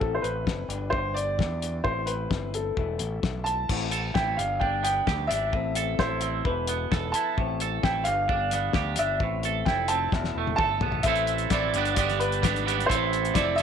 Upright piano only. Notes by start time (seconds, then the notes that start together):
0.00 A4
0.15 C5
0.22 B4
0.90 C5
1.14 D5
1.84 C5
2.06 B4
2.55 A4
3.44 A5
4.14 G5
4.37 F5
4.60 G5
4.84 G5
5.27 E5
5.99 C5
6.45 B4
7.12 A5
7.83 G5
8.04 F5
8.99 E5
9.65 G5
9.88 A5
10.56 A5
11.03 E5
11.51 D5
11.94 D5
12.19 B4
12.86 C5
13.34 D5
13.56 E5